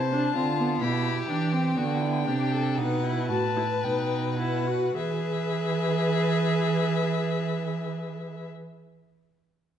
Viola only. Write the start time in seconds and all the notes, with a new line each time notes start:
0.12 D4
0.35 C4
0.58 B3
0.81 E4
1.29 D4
1.52 C4
1.77 B3
2.27 D4
2.78 D#4
3.04 E4
3.29 F#4
3.56 E4
3.84 D#4
4.39 E4
4.67 F#4
4.96 G#4